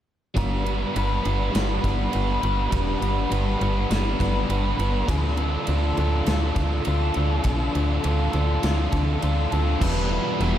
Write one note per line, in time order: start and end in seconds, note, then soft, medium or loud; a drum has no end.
0.34 0.85 G1 medium
0.34 0.94 G3 medium
0.34 0.66 B3 medium
0.34 0.67 D4 medium
0.34 0.64 B4 loud
0.34 kick medium
0.34 ride medium
0.64 0.96 B3 medium
0.64 0.95 D4 medium
0.64 0.97 B4 medium
0.64 ride medium
0.95 1.20 G1 medium
0.95 1.51 G3 medium
0.95 1.24 B3 medium
0.95 1.26 D4 medium
0.95 1.23 B4 medium
0.95 ride medium
1.23 1.50 G1 medium
1.23 1.54 B3 medium
1.23 1.52 D4 medium
1.23 1.54 B4 medium
1.23 ride medium
1.52 1.80 G1 medium
1.52 2.09 G3 medium
1.52 1.83 B3 medium
1.52 1.84 D4 medium
1.52 1.81 B4 medium
1.52 ride medium
1.56 snare loud
1.81 2.09 G1 medium
1.81 2.11 B3 medium
1.81 2.11 D4 medium
1.81 2.13 B4 medium
1.81 kick medium
1.81 ride medium
2.10 2.68 G3 medium
2.10 2.42 B3 medium
2.10 2.43 D4 medium
2.10 2.40 B4 medium
2.10 ride medium
2.15 2.39 G1 medium
2.41 2.68 G1 medium
2.41 2.71 B3 medium
2.41 2.70 D4 medium
2.41 2.72 B4 medium
2.41 ride medium
2.69 2.97 E1 medium
2.69 3.28 G3 medium
2.69 3.02 B3 medium
2.69 3.03 D4 medium
2.69 2.99 B4 medium
2.69 kick loud
2.69 ride medium
3.00 3.27 G1 medium
3.00 3.31 B3 medium
3.00 3.30 D4 medium
3.00 3.32 B4 medium
3.00 ride medium
3.29 3.56 G1 medium
3.29 3.88 G3 medium
3.29 3.61 B3 medium
3.29 3.62 D4 medium
3.29 3.59 B4 medium
3.29 ride medium
3.59 3.86 G1 medium
3.59 3.91 B3 medium
3.59 3.90 D4 medium
3.59 3.92 B4 medium
3.59 ride medium
3.89 4.15 G1 medium
3.89 4.47 G3 medium
3.89 4.21 B3 medium
3.89 4.22 D4 medium
3.89 4.19 B4 medium
3.89 snare loud
3.89 ride medium
4.20 4.45 G1 medium
4.20 4.50 B3 medium
4.20 4.49 D4 medium
4.20 4.51 B4 medium
4.20 kick medium
4.20 ride soft
4.48 4.75 G1 medium
4.48 5.06 G3 medium
4.48 4.79 B3 medium
4.48 4.80 D4 medium
4.48 4.77 B4 medium
4.48 ride medium
4.77 5.04 G1 medium
4.77 5.08 B3 medium
4.77 5.08 D4 soft
4.77 5.09 B4 medium
4.77 ride medium
5.07 5.58 D2 medium
5.07 5.67 D3 medium
5.07 5.40 D4 loud
5.07 5.38 F4 loud
5.07 5.37 A4 loud
5.07 kick medium
5.07 ride medium
5.37 5.68 D4 medium
5.37 5.69 F4 medium
5.37 5.70 A4 medium
5.37 ride medium
5.67 5.93 D2 medium
5.67 6.26 D3 medium
5.67 6.01 D4 medium
5.67 5.99 F4 medium
5.67 5.98 A4 medium
5.67 ride medium
5.97 6.22 D2 medium
5.97 6.27 D4 medium
5.97 6.28 F4 medium
5.97 6.29 A4 medium
5.97 ride medium
6.26 6.52 D2 medium
6.26 6.84 D3 medium
6.26 6.57 D4 medium
6.26 6.55 F4 medium
6.26 6.54 A4 loud
6.26 snare loud
6.26 ride medium
6.56 6.81 D2 medium
6.56 6.86 D4 soft
6.56 6.86 F4 medium
6.56 6.87 A4 medium
6.56 kick medium
6.56 ride medium
6.85 7.11 D2 medium
6.85 7.43 D3 medium
6.85 7.17 D4 medium
6.85 7.16 F4 medium
6.85 7.14 A4 medium
6.85 ride medium
7.14 7.41 D2 medium
7.14 7.44 F4 medium
7.14 7.46 A4 medium
7.14 ride medium
7.19 7.44 D4 soft
7.44 7.70 B1 medium
7.44 8.02 D3 medium
7.44 7.76 D4 medium
7.44 7.74 F4 medium
7.44 7.72 A4 medium
7.44 kick loud
7.44 ride medium
7.73 8.00 D2 medium
7.73 8.03 D4 medium
7.73 8.04 F4 medium
7.73 8.05 A4 medium
7.73 ride medium
8.03 8.29 D2 medium
8.03 8.61 D3 medium
8.03 8.34 D4 medium
8.03 8.33 F4 medium
8.03 8.31 A4 medium
8.03 ride medium
8.32 8.59 D2 medium
8.32 8.62 D4 medium
8.32 8.63 F4 medium
8.32 8.64 A4 medium
8.32 ride medium
8.62 8.88 D2 medium
8.62 9.19 D3 medium
8.62 8.94 D4 medium
8.62 8.92 F4 medium
8.62 8.90 A4 loud
8.62 snare loud
8.62 ride medium
8.92 9.17 D2 medium
8.92 9.20 D4 medium
8.92 9.21 F4 medium
8.92 9.22 A4 medium
8.92 kick medium
8.92 ride medium
9.20 9.47 D2 medium
9.20 9.78 D3 medium
9.20 9.54 D4 medium
9.20 9.52 F4 medium
9.20 9.50 A4 medium
9.20 ride medium
9.51 9.77 D2 medium
9.51 9.81 D4 soft
9.51 9.80 F4 medium
9.51 9.79 A4 medium
9.51 ride medium
9.81 10.20 E1 loud
9.81 10.39 E2 medium
9.81 10.39 B2 loud
9.81 10.09 E3 medium
9.81 10.11 G3 loud
9.81 10.12 B3 loud
9.81 10.13 E4 loud
9.81 kick loud
9.81 crash loud
9.81 crash medium
10.09 10.41 E3 medium
10.09 10.41 G3 medium
10.09 10.42 B3 medium
10.09 10.42 E4 medium
10.39 10.58 E1 loud
10.39 10.58 E2 medium
10.39 10.58 B2 loud
10.39 10.56 E3 medium
10.39 10.55 G3 loud
10.39 10.54 B3 loud
10.39 10.53 E4 loud
10.39 crash medium
10.53 10.58 G3 medium
10.53 10.58 B3 medium
10.53 10.58 E4 medium